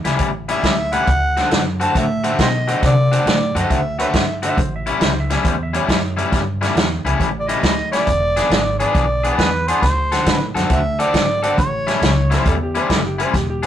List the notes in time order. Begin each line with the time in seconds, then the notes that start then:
0.05 C#2 A2 G3 C#4 E4, snare, closed hi-hat
0.19 A1, kick, closed hi-hat
0.49 A2 G3 C#4 E4 E5, closed hi-hat
0.63 D2, kick, snare, closed hi-hat
0.92 A2 G3 C#4 E4 F#5, closed hi-hat
1.07 D2, kick, closed hi-hat
1.37 D3 A3 C4 F#4, snare, closed hi-hat
1.51 F#2, snare, closed hi-hat
1.80 D3 A3 C4 F#4 A5, closed hi-hat
1.95 A2 E5, kick, closed hi-hat
2.24 D3 A3 C4 F#4, closed hi-hat
2.39 B2 G4 C5 D#5, kick, snare, closed hi-hat
2.68 D3 A3 C4 F#4, closed hi-hat
2.82 C3 D5, kick, snare, closed hi-hat
3.12 D3 A3 C4 F#4, closed hi-hat
3.26 A2 D5, snare, closed hi-hat
3.55 F#2 D3 A3 C4 F#4 D#5, closed hi-hat
3.70 D2 E5, kick, closed hi-hat
3.99 D3 A3 C4 F#4 B4 C#5 E5, closed hi-hat
4.14 G2, kick, snare, closed hi-hat
4.43 D3 A3 C4 F#4 E5, closed hi-hat
4.57 A1 C5, kick, closed hi-hat
4.76 E5
4.86 A2 G3 C#4 E4, closed hi-hat
4.91 E5
5.01 C#2, snare, closed hi-hat
5.05 C5
5.20 E5
5.30 A2 G3 C#4 E4 E5, snare, closed hi-hat
5.45 E2 C5, kick, closed hi-hat
5.63 E5
5.73 A2 G3 C#4 E4 C#5, closed hi-hat
5.89 F#2, kick, snare, closed hi-hat
6.17 A2 G3 C#4 E4, closed hi-hat
6.32 G2, kick, snare, closed hi-hat
6.61 A2 G3 C#4 E4, snare, closed hi-hat
6.75 E2, snare, closed hi-hat
7.05 C#2 A2 G3 C#4 E4, closed hi-hat
7.20 A1, kick, closed hi-hat
7.39 D5
7.48 A2 G3 C#4 E4 D#5, closed hi-hat
7.63 D2, kick, snare, closed hi-hat
7.92 A2 G3 C#4 E4 D5, snare, closed hi-hat
8.07 E1, kick, closed hi-hat
8.37 E3 B3 D4 G#4, snare, closed hi-hat
8.50 G#1, snare, closed hi-hat
8.79 E3 B3 D4 G#4 D5, closed hi-hat
8.95 B1, kick, closed hi-hat
9.24 E3 B3 D4 G#4, closed hi-hat
9.37 E2 B4, kick, snare, closed hi-hat
9.67 E3 B3 D4 G#4 C5, closed hi-hat
9.82 D2 C5, kick, snare, closed hi-hat
10.12 D3 C4 F#4 A4, snare, closed hi-hat
10.26 A2, snare, closed hi-hat
10.31 B4
10.55 F#2 D3 C4 F#4 A4, snare, closed hi-hat
10.70 D2 E5, kick, closed hi-hat
10.99 D3 C4 F#4 A4 D5, closed hi-hat
11.14 G#1, kick, snare, closed hi-hat
11.43 D3 C4 F#4 A4 D5, closed hi-hat
11.58 A1 C#5, kick, closed hi-hat
11.87 A2 G3 C#4 E4, snare, closed hi-hat
12.02 C#2, snare, closed hi-hat
12.30 A2 G3 C#4 E4 C5, snare, closed hi-hat
12.45 E2 A4, kick, closed hi-hat
12.63 G4
12.75 A2 G3 C#4 E4 C5, closed hi-hat
12.90 F#1 A4, kick, snare, closed hi-hat
13.07 G4
13.18 A2 G3 C#4 E4 C5, closed hi-hat
13.34 E1 G4, kick, snare, closed hi-hat
13.50 G4
13.63 D4 G#4, closed hi-hat